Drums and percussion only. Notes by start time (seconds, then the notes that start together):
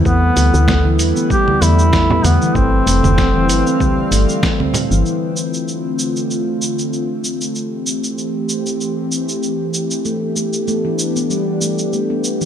0.05 kick, cabasa
0.37 open hi-hat, cabasa
0.54 cabasa
0.68 kick, snare, low conga, cabasa
0.99 open hi-hat, cabasa
1.16 cabasa
1.30 kick, cabasa
1.48 low conga
1.62 open hi-hat, cabasa
1.79 cabasa
1.93 kick, snare, cabasa
2.10 frame drum
2.25 open hi-hat, low conga, cabasa
2.42 cabasa
2.55 kick, cabasa
2.87 open hi-hat, cabasa
3.04 low conga, cabasa
3.18 kick, snare, cabasa
3.49 open hi-hat, cabasa
3.67 cabasa
3.80 kick, low conga, cabasa
4.12 open hi-hat, cabasa
4.29 cabasa
4.43 kick, snare, cabasa
4.60 low conga
4.74 open hi-hat, frame drum, cabasa
4.92 cabasa
5.06 cabasa
5.37 cabasa
5.54 cabasa
5.68 cabasa
5.99 cabasa
6.16 cabasa
6.31 cabasa
6.62 cabasa
6.79 cabasa
6.93 cabasa
7.24 cabasa
7.41 cabasa
7.55 cabasa
7.87 cabasa
8.04 cabasa
8.18 cabasa
8.49 cabasa
8.66 cabasa
8.81 cabasa
9.12 cabasa
9.29 cabasa
9.43 cabasa
9.74 cabasa
9.91 cabasa
10.05 cabasa
10.36 cabasa
10.53 cabasa
10.68 cabasa
10.99 cabasa
11.16 cabasa
11.30 cabasa
11.61 cabasa
11.79 cabasa
11.93 cabasa
12.24 cabasa
12.41 cabasa